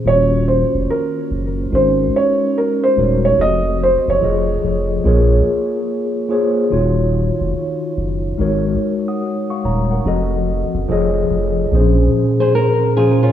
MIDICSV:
0, 0, Header, 1, 5, 480
1, 0, Start_track
1, 0, Key_signature, -5, "minor"
1, 0, Tempo, 833333
1, 30, Time_signature, 4, 2, 24, 8
1, 7673, End_track
2, 0, Start_track
2, 0, Title_t, "Felt piano"
2, 0, Program_c, 0, 0
2, 43, Note_on_c, 0, 73, 89
2, 260, Note_off_c, 0, 73, 0
2, 277, Note_on_c, 0, 72, 73
2, 520, Note_off_c, 0, 72, 0
2, 521, Note_on_c, 0, 70, 77
2, 1008, Note_on_c, 0, 72, 82
2, 1010, Note_off_c, 0, 70, 0
2, 1245, Note_on_c, 0, 73, 82
2, 1246, Note_off_c, 0, 72, 0
2, 1485, Note_off_c, 0, 73, 0
2, 1485, Note_on_c, 0, 70, 77
2, 1633, Note_on_c, 0, 72, 89
2, 1634, Note_off_c, 0, 70, 0
2, 1851, Note_off_c, 0, 72, 0
2, 1871, Note_on_c, 0, 73, 79
2, 1948, Note_off_c, 0, 73, 0
2, 1965, Note_on_c, 0, 75, 106
2, 2181, Note_off_c, 0, 75, 0
2, 2208, Note_on_c, 0, 72, 86
2, 2356, Note_off_c, 0, 72, 0
2, 2360, Note_on_c, 0, 73, 80
2, 3616, Note_off_c, 0, 73, 0
2, 7673, End_track
3, 0, Start_track
3, 0, Title_t, "Nylon-string guitar"
3, 0, Program_c, 1, 24
3, 7143, Note_on_c, 1, 72, 72
3, 7148, Note_on_c, 1, 68, 63
3, 7226, Note_off_c, 1, 72, 0
3, 7228, Note_on_c, 1, 70, 75
3, 7229, Note_off_c, 1, 68, 0
3, 7457, Note_off_c, 1, 70, 0
3, 7469, Note_on_c, 1, 68, 85
3, 7472, Note_on_c, 1, 65, 72
3, 7612, Note_off_c, 1, 65, 0
3, 7614, Note_off_c, 1, 68, 0
3, 7619, Note_on_c, 1, 61, 60
3, 7620, Note_on_c, 1, 65, 71
3, 7673, Note_off_c, 1, 61, 0
3, 7673, Note_off_c, 1, 65, 0
3, 7673, End_track
4, 0, Start_track
4, 0, Title_t, "Tine electric piano"
4, 0, Program_c, 2, 4
4, 0, Control_c, 2, 64, 127
4, 25, Note_on_c, 2, 51, 65
4, 32, Note_on_c, 2, 58, 66
4, 32, Note_on_c, 2, 65, 67
4, 37, Control_c, 2, 64, 0
4, 39, Note_on_c, 2, 66, 62
4, 44, Note_on_c, 2, 72, 61
4, 84, Note_off_c, 2, 72, 0
4, 84, Note_on_c, 2, 61, 73
4, 140, Control_c, 2, 64, 127
4, 889, Note_off_c, 2, 51, 0
4, 892, Note_off_c, 2, 58, 0
4, 892, Note_off_c, 2, 65, 0
4, 896, Note_off_c, 2, 66, 0
4, 918, Note_off_c, 2, 61, 0
4, 982, Note_on_c, 2, 56, 75
4, 991, Note_on_c, 2, 63, 67
4, 995, Note_on_c, 2, 66, 62
4, 996, Control_c, 2, 64, 0
4, 1000, Note_on_c, 2, 70, 65
4, 1005, Note_on_c, 2, 61, 83
4, 1109, Control_c, 2, 64, 127
4, 1636, Note_off_c, 2, 56, 0
4, 1640, Note_off_c, 2, 63, 0
4, 1642, Note_off_c, 2, 66, 0
4, 1645, Note_off_c, 2, 70, 0
4, 1647, Note_off_c, 2, 61, 0
4, 1706, Note_on_c, 2, 56, 70
4, 1712, Note_on_c, 2, 63, 60
4, 1717, Note_on_c, 2, 66, 70
4, 1722, Note_on_c, 2, 70, 69
4, 1725, Note_on_c, 2, 73, 82
4, 1924, Note_off_c, 2, 56, 0
4, 1927, Note_off_c, 2, 63, 0
4, 1930, Note_off_c, 2, 66, 0
4, 1932, Note_off_c, 2, 70, 0
4, 1934, Note_off_c, 2, 73, 0
4, 1945, Note_on_c, 2, 53, 67
4, 1949, Note_on_c, 2, 60, 64
4, 1956, Note_on_c, 2, 66, 65
4, 1957, Control_c, 2, 64, 0
4, 1959, Note_on_c, 2, 69, 69
4, 1966, Note_on_c, 2, 75, 80
4, 2059, Control_c, 2, 64, 127
4, 2416, Note_off_c, 2, 53, 0
4, 2422, Note_on_c, 2, 53, 82
4, 2425, Note_on_c, 2, 65, 76
4, 2427, Note_off_c, 2, 69, 0
4, 2430, Note_off_c, 2, 60, 0
4, 2432, Note_on_c, 2, 68, 74
4, 2433, Note_off_c, 2, 66, 0
4, 2434, Note_on_c, 2, 69, 75
4, 2437, Note_off_c, 2, 75, 0
4, 2437, Control_c, 2, 64, 0
4, 2438, Note_on_c, 2, 73, 71
4, 2444, Note_on_c, 2, 75, 93
4, 2540, Control_c, 2, 64, 127
4, 2859, Note_off_c, 2, 53, 0
4, 2861, Note_off_c, 2, 65, 0
4, 2864, Note_off_c, 2, 68, 0
4, 2865, Note_off_c, 2, 69, 0
4, 2867, Note_off_c, 2, 73, 0
4, 2870, Note_off_c, 2, 75, 0
4, 2903, Note_on_c, 2, 58, 91
4, 2909, Note_on_c, 2, 65, 74
4, 2913, Note_on_c, 2, 68, 84
4, 2917, Control_c, 2, 64, 0
4, 2919, Note_on_c, 2, 70, 81
4, 2922, Note_on_c, 2, 73, 95
4, 3004, Control_c, 2, 64, 127
4, 3556, Note_off_c, 2, 58, 0
4, 3559, Note_off_c, 2, 65, 0
4, 3561, Note_off_c, 2, 68, 0
4, 3564, Note_off_c, 2, 70, 0
4, 3566, Note_off_c, 2, 73, 0
4, 3622, Note_on_c, 2, 58, 90
4, 3625, Note_on_c, 2, 65, 80
4, 3632, Note_on_c, 2, 68, 83
4, 3636, Note_on_c, 2, 72, 76
4, 3639, Note_on_c, 2, 73, 91
4, 3843, Note_off_c, 2, 58, 0
4, 3844, Note_off_c, 2, 65, 0
4, 3847, Note_off_c, 2, 68, 0
4, 3849, Note_off_c, 2, 72, 0
4, 3851, Note_off_c, 2, 73, 0
4, 3859, Note_on_c, 2, 51, 81
4, 3866, Note_on_c, 2, 63, 77
4, 3869, Note_on_c, 2, 65, 84
4, 3874, Note_on_c, 2, 66, 77
4, 3877, Control_c, 2, 64, 0
4, 3879, Note_on_c, 2, 73, 87
4, 3973, Control_c, 2, 64, 127
4, 4726, Note_off_c, 2, 51, 0
4, 4729, Note_off_c, 2, 63, 0
4, 4731, Note_off_c, 2, 65, 0
4, 4733, Note_off_c, 2, 66, 0
4, 4736, Note_off_c, 2, 73, 0
4, 4826, Note_on_c, 2, 56, 88
4, 4831, Note_on_c, 2, 63, 77
4, 4836, Note_on_c, 2, 66, 83
4, 4838, Control_c, 2, 64, 0
4, 4842, Note_on_c, 2, 70, 81
4, 4847, Note_on_c, 2, 73, 96
4, 4952, Control_c, 2, 64, 127
4, 5076, Note_off_c, 2, 70, 0
4, 5078, Note_off_c, 2, 73, 0
4, 5230, Note_on_c, 2, 87, 60
4, 5232, Note_on_c, 2, 78, 51
4, 5455, Note_off_c, 2, 78, 0
4, 5455, Note_off_c, 2, 87, 0
4, 5473, Note_on_c, 2, 85, 63
4, 5476, Note_on_c, 2, 77, 52
4, 5478, Note_off_c, 2, 56, 0
4, 5480, Note_off_c, 2, 63, 0
4, 5482, Note_off_c, 2, 66, 0
4, 5551, Note_off_c, 2, 85, 0
4, 5553, Note_off_c, 2, 77, 0
4, 5559, Note_on_c, 2, 73, 61
4, 5560, Note_on_c, 2, 82, 72
4, 5699, Note_off_c, 2, 73, 0
4, 5700, Note_off_c, 2, 82, 0
4, 5709, Note_on_c, 2, 78, 58
4, 5713, Note_on_c, 2, 70, 55
4, 5786, Note_on_c, 2, 53, 86
4, 5792, Note_on_c, 2, 60, 79
4, 5797, Note_on_c, 2, 66, 71
4, 5798, Control_c, 2, 64, 0
4, 5801, Note_on_c, 2, 69, 82
4, 5806, Note_on_c, 2, 75, 101
4, 5885, Control_c, 2, 64, 127
4, 5933, Note_off_c, 2, 78, 0
4, 5936, Note_off_c, 2, 70, 0
4, 6260, Note_off_c, 2, 53, 0
4, 6267, Note_on_c, 2, 53, 103
4, 6271, Note_off_c, 2, 60, 0
4, 6272, Note_on_c, 2, 65, 80
4, 6274, Note_off_c, 2, 66, 0
4, 6275, Note_off_c, 2, 69, 0
4, 6276, Note_on_c, 2, 68, 90
4, 6277, Control_c, 2, 64, 0
4, 6278, Note_off_c, 2, 75, 0
4, 6283, Note_on_c, 2, 69, 90
4, 6285, Note_on_c, 2, 73, 83
4, 6290, Note_on_c, 2, 75, 107
4, 6382, Control_c, 2, 64, 127
4, 6702, Note_off_c, 2, 53, 0
4, 6704, Note_off_c, 2, 65, 0
4, 6706, Note_off_c, 2, 68, 0
4, 6709, Note_off_c, 2, 69, 0
4, 6711, Note_off_c, 2, 73, 0
4, 6713, Note_off_c, 2, 75, 0
4, 6749, Note_on_c, 2, 46, 95
4, 6755, Note_on_c, 2, 53, 83
4, 6757, Control_c, 2, 64, 0
4, 6758, Note_on_c, 2, 60, 62
4, 6764, Note_on_c, 2, 68, 87
4, 6770, Note_on_c, 2, 72, 99
4, 6796, Note_on_c, 2, 61, 82
4, 6801, Note_off_c, 2, 60, 0
4, 6853, Control_c, 2, 64, 127
4, 7399, Note_off_c, 2, 46, 0
4, 7402, Note_off_c, 2, 53, 0
4, 7406, Note_off_c, 2, 68, 0
4, 7409, Note_off_c, 2, 72, 0
4, 7422, Note_off_c, 2, 61, 0
4, 7465, Note_on_c, 2, 46, 83
4, 7473, Note_on_c, 2, 53, 76
4, 7476, Note_on_c, 2, 61, 82
4, 7482, Note_on_c, 2, 68, 77
4, 7485, Note_on_c, 2, 72, 96
4, 7673, Note_off_c, 2, 46, 0
4, 7673, Note_off_c, 2, 53, 0
4, 7673, Note_off_c, 2, 61, 0
4, 7673, Note_off_c, 2, 68, 0
4, 7673, Note_off_c, 2, 72, 0
4, 7673, End_track
5, 0, Start_track
5, 0, Title_t, "Sub bass"
5, 0, Program_c, 3, 38
5, 28, Note_on_c, 3, 27, 101
5, 370, Note_off_c, 3, 27, 0
5, 426, Note_on_c, 3, 29, 100
5, 500, Note_off_c, 3, 29, 0
5, 752, Note_on_c, 3, 30, 83
5, 960, Note_off_c, 3, 30, 0
5, 992, Note_on_c, 3, 32, 95
5, 1199, Note_off_c, 3, 32, 0
5, 1710, Note_on_c, 3, 27, 89
5, 1918, Note_off_c, 3, 27, 0
5, 1947, Note_on_c, 3, 29, 107
5, 2289, Note_off_c, 3, 29, 0
5, 2345, Note_on_c, 3, 30, 98
5, 2420, Note_off_c, 3, 30, 0
5, 2429, Note_on_c, 3, 29, 107
5, 2638, Note_off_c, 3, 29, 0
5, 2669, Note_on_c, 3, 29, 90
5, 2878, Note_off_c, 3, 29, 0
5, 2908, Note_on_c, 3, 34, 96
5, 3117, Note_off_c, 3, 34, 0
5, 3870, Note_on_c, 3, 27, 96
5, 4211, Note_off_c, 3, 27, 0
5, 4264, Note_on_c, 3, 29, 93
5, 4339, Note_off_c, 3, 29, 0
5, 4590, Note_on_c, 3, 30, 89
5, 4799, Note_off_c, 3, 30, 0
5, 4833, Note_on_c, 3, 32, 95
5, 5040, Note_off_c, 3, 32, 0
5, 5553, Note_on_c, 3, 27, 86
5, 5760, Note_off_c, 3, 27, 0
5, 5788, Note_on_c, 3, 29, 114
5, 6130, Note_off_c, 3, 29, 0
5, 6185, Note_on_c, 3, 30, 92
5, 6260, Note_off_c, 3, 30, 0
5, 6270, Note_on_c, 3, 29, 113
5, 6478, Note_off_c, 3, 29, 0
5, 6509, Note_on_c, 3, 29, 93
5, 6718, Note_off_c, 3, 29, 0
5, 6747, Note_on_c, 3, 34, 92
5, 6957, Note_off_c, 3, 34, 0
5, 7673, End_track
0, 0, End_of_file